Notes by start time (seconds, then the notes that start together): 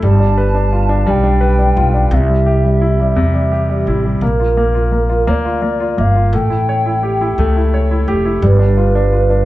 0.02 G1 G3 A5
0.20 D4
0.38 B4
0.54 D4
0.72 F4
0.89 D4
1.07 B1 G3 G5
1.24 D4
1.41 B4
1.59 D4
1.77 B1 F4
1.94 D4
2.11 C2 C3 E5
2.29 G3
2.46 G4
2.64 G3
2.81 E4
3.00 G3
3.16 E2 C3 E5
3.34 G3
3.52 G4
3.70 G3
3.87 A1 E4
4.05 G3
4.21 A#1 A#3 A#4
4.40 F4
4.57 A#3
4.75 F4
4.92 A#3
5.09 F4
5.27 D2 A#3 D5
5.45 F4
5.62 A#3
5.80 F4
5.98 G1 A#3 F5
6.15 F4
6.33 A1 A3 G5
6.50 E4
6.69 C#5
6.86 E4
7.03 G4
7.21 E4
7.38 C#2 A3
7.57 E4
7.74 C#5
7.91 E4
8.08 F1 G4
8.25 E4
8.42 G1 G3 B4
8.59 D4
8.77 F4
8.95 D4
9.12 F4
9.30 D4